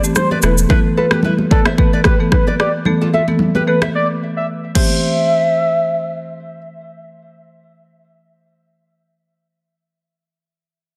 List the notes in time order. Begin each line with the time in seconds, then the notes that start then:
0.04 E3 A3 C4 G4, shaker
0.16 C5, cross-stick, low conga, shaker
0.31 B4 D5, high conga
0.42 E1 E3 A3 B3 E4 A4 B4, cross-stick, shaker
0.58 shaker
0.69 E3 A3 B3 E4 A4 B4, kick, low conga
0.97 F4 A4 B4, high conga
1.11 E3 A3 B3 G4 A4 B4, cross-stick, high conga
1.23 E4 B4, low conga
1.38 high conga
1.51 E3 A3 B3 A4 B4 D5, kick
1.65 C5 E5, cross-stick, high conga
1.78 E3 A3 B3 A4 B4, kick
1.93 B4 D5
2.04 G4 B4, kick, cross-stick, high conga
2.20 E3 A3 B3 A4
2.32 B4, kick, cross-stick, low conga
2.47 B4 D5, high conga
2.60 G4 B4 D5, cross-stick
2.85 E3 A3 B3 A4, low conga
3.02 F4 A4
3.14 F4 A4 E5, high conga
3.28 E3 A3 B3 A4, high conga
3.39 low conga
3.55 G4 B4, high conga
3.67 E3 A3 B3 A4 B4
3.82 C5 E5, cross-stick, high conga
3.95 D5
4.37 E5
4.75 E3 A3 C4 G4 C5 E5, kick, crash, high conga